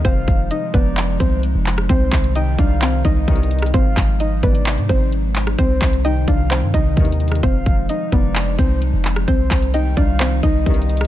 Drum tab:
HH |x-----------x-----x-----x-----x-----x-----x-----|x-----x--x--x-----x-----x-----x-----x-x-x-x-x-x-|x-----------x-----x--x--x--x--x-----x-----x-----|x-----x--x--x-----x-----x-----x-----x-x-x-x-x-x-|
CP |------------------------x-----------------x-----|------x-----------------x-----------------------|------x-----------------x-----------------x-----|------x-----------------x-----------------------|
SD |---------------------------------------------r--|---------------------------------------------r--|---------------------------------------------r--|---------------------------------------------r--|
BD |o-----o-----------o-----------o-----------------|o-----o-----------o-----------o-----o-----------|o-----o-----------o-----------o-----------------|o-----o-----------o-----------o-----o-----------|

HH |x-----------x-----x-----x-----x-----x-----x-----|x-----x--x--x-----x-----x-----x-----x-x-x-x-x---|
CP |------------------------x-----------------x-----|------x-----------------x-----------------------|
SD |---------------------------------------------r--|---------------------------------------------r--|
BD |o-----o-----------o-----------o-----------------|o-----o-----------o-----------o-----o-----------|